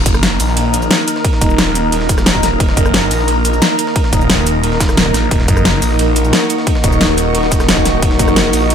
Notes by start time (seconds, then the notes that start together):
Already playing: D#3 A#3 D#4 A#4
0.00 D#5
0.05 F#1 A#4 A#5, kick, closed hi-hat, ride, cabasa
0.14 cross-stick, cabasa
0.23 snare, closed hi-hat, ride
0.40 A#1, closed hi-hat, open hi-hat, cabasa
0.48 snare
0.57 closed hi-hat, ride
0.74 closed hi-hat, ride, cabasa
0.82 ride, cabasa
0.91 snare, closed hi-hat, ride
1.08 closed hi-hat, ride, cabasa
1.16 snare
1.24 kick, closed hi-hat, ride
1.33 snare
1.41 D#1, kick, closed hi-hat, ride, cabasa
1.50 cabasa
1.58 snare, closed hi-hat, ride
1.75 closed hi-hat, ride, cabasa
1.92 D#1, closed hi-hat, ride
2.01 snare
2.09 kick, closed hi-hat, ride, cabasa
2.18 cross-stick, snare, cabasa
2.26 snare, closed hi-hat, ride
2.35 kick
2.43 cross-stick, snare, closed hi-hat, ride, cabasa
2.60 D#1, kick, closed hi-hat, ride
2.69 snare
2.77 F#1, kick, closed hi-hat, ride, cabasa
2.86 cross-stick, cabasa
2.94 snare, closed hi-hat, ride
3.11 A#1, closed hi-hat, open hi-hat, cabasa
3.19 snare
3.28 closed hi-hat, ride
3.45 closed hi-hat, ride, cabasa
3.53 ride, cabasa
3.62 snare, closed hi-hat, ride
3.79 closed hi-hat, ride, cabasa
3.87 snare
3.96 kick, closed hi-hat, ride
4.04 snare
4.13 D#1, kick, closed hi-hat, ride, cabasa
4.21 cabasa
4.30 snare, closed hi-hat, ride
4.47 closed hi-hat, ride, cabasa
4.63 D#1, closed hi-hat, ride
4.72 snare
4.80 kick, snare, closed hi-hat, ride, cabasa
4.89 cross-stick, snare, cabasa
4.97 snare, closed hi-hat, ride
5.06 kick
5.14 A#1, cross-stick, snare, closed hi-hat, ride, cabasa
5.31 D#1 F#4, kick, closed hi-hat, ride
5.40 snare
5.48 F#1 C#6, kick, closed hi-hat, ride, cabasa
5.57 cross-stick, cabasa
5.65 snare, closed hi-hat, ride
5.82 A#1, closed hi-hat, open hi-hat, cabasa
5.91 snare
5.99 closed hi-hat, ride
6.16 closed hi-hat, ride, cabasa
6.24 ride, cabasa
6.33 snare, closed hi-hat, ride
6.50 closed hi-hat, ride, cabasa
6.58 snare
6.67 kick, closed hi-hat, ride
6.75 snare
6.84 D#1, kick, closed hi-hat, ride, cabasa
6.92 cabasa
7.01 snare, closed hi-hat, ride
7.18 closed hi-hat, ride, cabasa
7.35 D#1, closed hi-hat, ride
7.43 snare
7.52 kick, closed hi-hat, ride, cabasa
7.60 cross-stick, snare, cabasa
7.69 snare, closed hi-hat, ride
7.77 kick
7.85 cross-stick, snare, closed hi-hat, ride, cabasa
8.02 D#1, kick, closed hi-hat, ride
8.11 snare
8.19 F#1, kick, closed hi-hat, ride, cabasa
8.28 cross-stick, cabasa
8.36 snare, closed hi-hat, ride
8.53 A#1, closed hi-hat, open hi-hat, cabasa
8.62 snare
8.70 closed hi-hat, ride